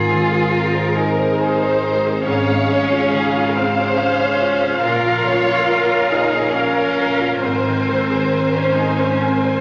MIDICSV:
0, 0, Header, 1, 9, 480
1, 0, Start_track
1, 0, Tempo, 859599
1, 1266, Time_signature, 3, 2, 24, 8
1, 3658, Tempo, 890208
1, 5305, End_track
2, 0, Start_track
2, 0, Title_t, "Violin section"
2, 0, Program_c, 0, 48
2, 0, Note_on_c, 0, 72, 37
2, 1246, Note_off_c, 0, 72, 0
2, 1264, Note_on_c, 0, 77, 44
2, 4106, Note_off_c, 0, 77, 0
2, 4133, Note_on_c, 0, 80, 43
2, 5305, Note_off_c, 0, 80, 0
2, 5305, End_track
3, 0, Start_track
3, 0, Title_t, "Viola section"
3, 0, Program_c, 1, 48
3, 0, Note_on_c, 1, 68, 42
3, 0, Note_on_c, 1, 70, 39
3, 1244, Note_off_c, 1, 70, 0
3, 1258, Note_on_c, 1, 77, 50
3, 2680, Note_off_c, 1, 68, 0
3, 2696, Note_on_c, 1, 70, 51
3, 4103, Note_off_c, 1, 77, 0
3, 4120, Note_on_c, 1, 72, 44
3, 5305, Note_off_c, 1, 70, 0
3, 5305, Note_off_c, 1, 72, 0
3, 5305, End_track
4, 0, Start_track
4, 0, Title_t, "Violin section"
4, 0, Program_c, 2, 48
4, 0, Note_on_c, 2, 68, 42
4, 279, Note_off_c, 2, 68, 0
4, 297, Note_on_c, 2, 70, 42
4, 776, Note_on_c, 2, 72, 51
4, 781, Note_off_c, 2, 70, 0
4, 1263, Note_off_c, 2, 72, 0
4, 1264, Note_on_c, 2, 73, 54
4, 1736, Note_off_c, 2, 73, 0
4, 1745, Note_on_c, 2, 68, 47
4, 1981, Note_on_c, 2, 72, 54
4, 1983, Note_off_c, 2, 68, 0
4, 2693, Note_on_c, 2, 70, 43
4, 2700, Note_off_c, 2, 72, 0
4, 2930, Note_on_c, 2, 73, 52
4, 2936, Note_off_c, 2, 70, 0
4, 3172, Note_on_c, 2, 70, 47
4, 3173, Note_off_c, 2, 73, 0
4, 3410, Note_off_c, 2, 70, 0
4, 3413, Note_on_c, 2, 68, 44
4, 3657, Note_off_c, 2, 68, 0
4, 3659, Note_on_c, 2, 70, 51
4, 4129, Note_off_c, 2, 70, 0
4, 4129, Note_on_c, 2, 72, 47
4, 5305, Note_off_c, 2, 72, 0
4, 5305, End_track
5, 0, Start_track
5, 0, Title_t, "Grand piano"
5, 0, Program_c, 3, 0
5, 0, Control_c, 3, 64, 127
5, 0, Note_on_c, 3, 44, 37
5, 0, Note_on_c, 3, 51, 28
5, 52, Note_on_c, 3, 60, 29
5, 130, Note_off_c, 3, 51, 0
5, 176, Note_on_c, 3, 68, 29
5, 249, Note_off_c, 3, 60, 0
5, 290, Note_on_c, 3, 70, 33
5, 371, Note_off_c, 3, 68, 0
5, 418, Note_on_c, 3, 72, 32
5, 488, Note_off_c, 3, 70, 0
5, 533, Note_on_c, 3, 80, 32
5, 612, Note_off_c, 3, 72, 0
5, 659, Note_on_c, 3, 72, 33
5, 730, Note_off_c, 3, 80, 0
5, 784, Note_on_c, 3, 80, 33
5, 854, Note_off_c, 3, 72, 0
5, 905, Note_on_c, 3, 72, 36
5, 977, Note_off_c, 3, 80, 0
5, 1028, Note_on_c, 3, 70, 33
5, 1098, Note_off_c, 3, 72, 0
5, 1149, Note_on_c, 3, 68, 35
5, 1219, Note_off_c, 3, 70, 0
5, 1240, Note_off_c, 3, 44, 0
5, 1268, Note_off_c, 3, 68, 0
5, 1270, Note_on_c, 3, 44, 44
5, 1276, Control_c, 3, 64, 0
5, 1381, Control_c, 3, 64, 127
5, 1391, Note_on_c, 3, 56, 35
5, 1516, Note_on_c, 3, 61, 35
5, 1581, Note_off_c, 3, 56, 0
5, 1632, Note_on_c, 3, 65, 35
5, 1703, Note_off_c, 3, 61, 0
5, 1754, Note_on_c, 3, 73, 38
5, 1820, Note_off_c, 3, 65, 0
5, 1882, Note_on_c, 3, 65, 38
5, 1940, Note_off_c, 3, 73, 0
5, 1991, Note_on_c, 3, 77, 40
5, 2064, Note_off_c, 3, 65, 0
5, 2109, Note_on_c, 3, 61, 38
5, 2178, Note_off_c, 3, 77, 0
5, 2220, Note_on_c, 3, 77, 42
5, 2297, Note_off_c, 3, 61, 0
5, 2347, Note_on_c, 3, 61, 41
5, 2413, Note_off_c, 3, 77, 0
5, 2466, Note_on_c, 3, 65, 38
5, 2537, Note_off_c, 3, 61, 0
5, 2586, Note_on_c, 3, 61, 37
5, 2656, Note_off_c, 3, 65, 0
5, 2682, Note_off_c, 3, 44, 0
5, 2704, Note_off_c, 3, 61, 0
5, 2710, Note_on_c, 3, 46, 43
5, 2712, Control_c, 3, 64, 0
5, 2788, Control_c, 3, 64, 127
5, 2822, Note_on_c, 3, 53, 36
5, 2945, Note_on_c, 3, 61, 36
5, 3012, Note_off_c, 3, 53, 0
5, 3059, Note_on_c, 3, 65, 33
5, 3133, Note_off_c, 3, 61, 0
5, 3182, Note_on_c, 3, 70, 36
5, 3250, Note_off_c, 3, 65, 0
5, 3297, Note_on_c, 3, 73, 35
5, 3372, Note_off_c, 3, 70, 0
5, 3424, Note_on_c, 3, 77, 36
5, 3489, Note_off_c, 3, 73, 0
5, 3534, Note_on_c, 3, 73, 34
5, 3614, Note_off_c, 3, 77, 0
5, 3657, Note_on_c, 3, 77, 37
5, 3727, Note_off_c, 3, 73, 0
5, 3779, Note_on_c, 3, 73, 35
5, 3845, Note_off_c, 3, 77, 0
5, 3890, Note_on_c, 3, 70, 31
5, 3965, Note_off_c, 3, 73, 0
5, 4013, Note_on_c, 3, 65, 31
5, 4080, Note_off_c, 3, 70, 0
5, 4111, Note_off_c, 3, 46, 0
5, 4130, Note_off_c, 3, 65, 0
5, 4132, Note_on_c, 3, 44, 38
5, 4140, Control_c, 3, 64, 0
5, 4222, Control_c, 3, 64, 127
5, 4258, Note_on_c, 3, 51, 29
5, 4374, Note_on_c, 3, 60, 31
5, 4445, Note_off_c, 3, 51, 0
5, 4494, Note_on_c, 3, 68, 30
5, 4563, Note_off_c, 3, 60, 0
5, 4616, Note_on_c, 3, 70, 32
5, 4684, Note_off_c, 3, 68, 0
5, 4742, Note_on_c, 3, 72, 34
5, 4806, Note_off_c, 3, 70, 0
5, 4863, Note_on_c, 3, 80, 31
5, 4928, Note_off_c, 3, 72, 0
5, 4975, Note_on_c, 3, 72, 31
5, 5049, Note_off_c, 3, 80, 0
5, 5093, Note_on_c, 3, 80, 31
5, 5167, Note_off_c, 3, 72, 0
5, 5217, Note_on_c, 3, 72, 34
5, 5290, Note_off_c, 3, 80, 0
5, 5305, Note_off_c, 3, 44, 0
5, 5305, Note_off_c, 3, 72, 0
5, 5305, End_track
6, 0, Start_track
6, 0, Title_t, "Cello"
6, 0, Program_c, 4, 42
6, 0, Note_on_c, 4, 65, 66
6, 537, Note_on_c, 4, 63, 51
6, 545, Note_off_c, 4, 65, 0
6, 1254, Note_off_c, 4, 63, 0
6, 1257, Note_on_c, 4, 61, 67
6, 1985, Note_on_c, 4, 60, 56
6, 1993, Note_off_c, 4, 61, 0
6, 2215, Note_on_c, 4, 61, 67
6, 2224, Note_off_c, 4, 60, 0
6, 2681, Note_off_c, 4, 61, 0
6, 2684, Note_on_c, 4, 65, 71
6, 3413, Note_on_c, 4, 63, 60
6, 3421, Note_off_c, 4, 65, 0
6, 3655, Note_on_c, 4, 61, 62
6, 3663, Note_off_c, 4, 63, 0
6, 4120, Note_off_c, 4, 61, 0
6, 4123, Note_on_c, 4, 60, 53
6, 4715, Note_off_c, 4, 60, 0
6, 4726, Note_on_c, 4, 61, 48
6, 4847, Note_on_c, 4, 63, 50
6, 4855, Note_off_c, 4, 61, 0
6, 4970, Note_on_c, 4, 61, 44
6, 4978, Note_off_c, 4, 63, 0
6, 5099, Note_on_c, 4, 60, 51
6, 5107, Note_off_c, 4, 61, 0
6, 5305, Note_off_c, 4, 60, 0
6, 5305, End_track
7, 0, Start_track
7, 0, Title_t, "Harp"
7, 0, Program_c, 5, 46
7, 0, Note_on_c, 5, 44, 40
7, 0, Note_on_c, 5, 60, 31
7, 0, Note_on_c, 5, 68, 33
7, 0, Note_on_c, 5, 70, 34
7, 0, Note_on_c, 5, 72, 35
7, 52, Note_on_c, 5, 51, 30
7, 293, Note_off_c, 5, 60, 0
7, 299, Note_on_c, 5, 60, 30
7, 529, Note_off_c, 5, 68, 0
7, 536, Note_on_c, 5, 68, 36
7, 771, Note_off_c, 5, 70, 0
7, 778, Note_on_c, 5, 70, 33
7, 1013, Note_off_c, 5, 60, 0
7, 1019, Note_on_c, 5, 60, 32
7, 1251, Note_off_c, 5, 44, 0
7, 1258, Note_on_c, 5, 44, 47
7, 1282, Note_off_c, 5, 51, 0
7, 1283, Note_off_c, 5, 60, 0
7, 1283, Note_off_c, 5, 70, 0
7, 1283, Note_off_c, 5, 72, 0
7, 1502, Note_on_c, 5, 56, 34
7, 1738, Note_on_c, 5, 49, 38
7, 1978, Note_on_c, 5, 65, 42
7, 2219, Note_on_c, 5, 77, 40
7, 2455, Note_on_c, 5, 61, 34
7, 2693, Note_on_c, 5, 46, 49
7, 2714, Note_off_c, 5, 68, 0
7, 2717, Note_off_c, 5, 44, 0
7, 2718, Note_off_c, 5, 56, 0
7, 2936, Note_on_c, 5, 53, 34
7, 3165, Note_off_c, 5, 61, 0
7, 3172, Note_on_c, 5, 61, 37
7, 3410, Note_off_c, 5, 65, 0
7, 3417, Note_on_c, 5, 65, 34
7, 3659, Note_on_c, 5, 70, 36
7, 3889, Note_off_c, 5, 61, 0
7, 3895, Note_on_c, 5, 61, 30
7, 3906, Note_off_c, 5, 49, 0
7, 4131, Note_on_c, 5, 44, 41
7, 4143, Note_off_c, 5, 46, 0
7, 4146, Note_off_c, 5, 53, 0
7, 4146, Note_off_c, 5, 77, 0
7, 4147, Note_off_c, 5, 65, 0
7, 4149, Note_off_c, 5, 61, 0
7, 4365, Note_on_c, 5, 51, 31
7, 4607, Note_on_c, 5, 60, 31
7, 4848, Note_on_c, 5, 68, 34
7, 5085, Note_off_c, 5, 70, 0
7, 5091, Note_on_c, 5, 70, 32
7, 5305, Note_off_c, 5, 44, 0
7, 5305, Note_off_c, 5, 51, 0
7, 5305, Note_off_c, 5, 60, 0
7, 5305, Note_off_c, 5, 68, 0
7, 5305, Note_off_c, 5, 70, 0
7, 5305, End_track
8, 0, Start_track
8, 0, Title_t, "Cello section"
8, 0, Program_c, 6, 48
8, 0, Note_on_c, 6, 44, 40
8, 2679, Note_off_c, 6, 44, 0
8, 2700, Note_on_c, 6, 46, 55
8, 4106, Note_off_c, 6, 46, 0
8, 4122, Note_on_c, 6, 44, 44
8, 5305, Note_off_c, 6, 44, 0
8, 5305, End_track
9, 0, Start_track
9, 0, Title_t, "Double bass section"
9, 0, Program_c, 7, 48
9, 0, Note_on_c, 7, 32, 42
9, 2676, Note_off_c, 7, 32, 0
9, 2698, Note_on_c, 7, 34, 49
9, 4105, Note_off_c, 7, 34, 0
9, 4124, Note_on_c, 7, 32, 42
9, 5305, Note_off_c, 7, 32, 0
9, 5305, End_track
0, 0, End_of_file